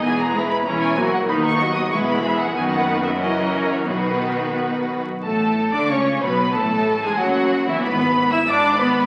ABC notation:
X:1
M:2/4
L:1/16
Q:1/4=93
K:B
V:1 name="Violin section"
g a2 b a g2 f | b c'2 d' c' b2 f | g f2 e d3 c | B4 z4 |
[K:A] a3 d' c'2 b2 | a3 g f3 e | b3 e' d'2 b2 |]
V:2 name="Violin section"
G2 [EB]2 [Ec]2 [FA]2 | [DB]2 [Fd]2 [EB]2 [Ge]2 | [FB]4 [FA]4 | [FB]6 z2 |
[K:A] A3 d c2 B2 | A3 G F3 E | B3 e d2 B2 |]
V:3 name="Viola section"
[E,B,]2 G,2 [E,C]2 [F,A,]2 | [D,D]2 [F,B,]2 [G,B,]2 [E,G,]2 | [D,B,]4 [E,C]4 | [D,B,]6 z2 |
[K:A] A,3 D C2 B,2 | A,3 G, F,3 E, | B,3 E D2 B,2 |]
V:4 name="Cello section" clef=bass
E,,4 E,,4 | D,,4 E,,4 | F,,8 | B,,6 z2 |
[K:A] A,,3 D, C,2 B,,2 | A,,3 G,, F,,3 E,, | G,,4 G,,4 |]
V:5 name="Double bass section" clef=bass
E,,,4 E,,,4 | D,,4 E,,,4 | F,,,8 | B,,,6 z2 |
[K:A] A,,,3 z C,,2 B,,,2 | A,,,3 z F,,,3 z | G,,,4 G,,,4 |]